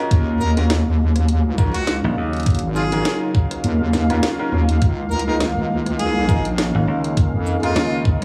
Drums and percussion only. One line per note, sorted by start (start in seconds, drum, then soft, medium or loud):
0.11 kick loud
0.11 closed hi-hat medium
0.41 shaker medium
0.57 closed hi-hat medium
0.70 snare loud
0.70 closed hi-hat medium
1.16 cross-stick soft
1.16 closed hi-hat medium
1.29 closed hi-hat medium
1.58 kick loud
1.58 shaker medium
1.74 closed hi-hat medium
1.87 snare loud
1.87 closed hi-hat medium
2.33 closed hi-hat soft
2.37 closed hi-hat soft
2.40 closed hi-hat soft
2.43 closed hi-hat soft
2.46 kick loud
2.46 closed hi-hat medium
2.50 closed hi-hat soft
2.55 closed hi-hat soft
2.59 closed hi-hat medium
2.76 shaker medium
2.92 closed hi-hat medium
3.05 snare loud
3.05 closed hi-hat medium
3.35 kick loud
3.51 cross-stick soft
3.51 closed hi-hat medium
3.64 closed hi-hat medium
3.93 snare medium
3.93 shaker medium
4.10 cross-stick soft
4.10 closed hi-hat medium
4.23 snare loud
4.23 closed hi-hat medium
4.52 cross-stick soft
4.69 closed hi-hat medium
4.82 kick loud
4.82 closed hi-hat medium
5.11 shaker medium
5.19 closed hi-hat medium
5.40 snare loud
5.40 closed hi-hat medium
5.86 cross-stick soft
5.86 closed hi-hat medium
5.99 closed hi-hat medium
6.29 kick loud
6.29 shaker medium
6.45 closed hi-hat medium
6.58 snare loud
6.58 closed hi-hat medium
7.04 closed hi-hat medium
7.17 kick loud
7.17 closed hi-hat medium
7.46 shaker medium
7.63 closed hi-hat medium
7.76 snare loud
7.76 closed hi-hat medium
8.05 kick loud